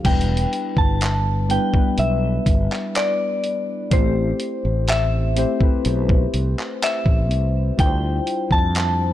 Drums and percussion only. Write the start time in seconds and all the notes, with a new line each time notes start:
0.05 kick, closed hi-hat, crash
0.21 closed hi-hat
0.37 closed hi-hat
0.53 closed hi-hat
0.77 kick
1.01 clap, closed hi-hat
1.50 closed hi-hat
1.74 kick
1.98 closed hi-hat
2.46 kick, closed hi-hat
2.72 clap
2.95 clap, closed hi-hat
3.44 closed hi-hat
3.91 kick, closed hi-hat
4.40 closed hi-hat
4.88 clap, closed hi-hat
5.37 closed hi-hat
5.61 kick
5.85 closed hi-hat
6.09 kick
6.34 closed hi-hat
6.59 clap
6.82 clap, closed hi-hat
7.06 kick
7.31 closed hi-hat
7.79 kick, closed hi-hat
8.27 closed hi-hat
8.51 kick
8.75 clap, closed hi-hat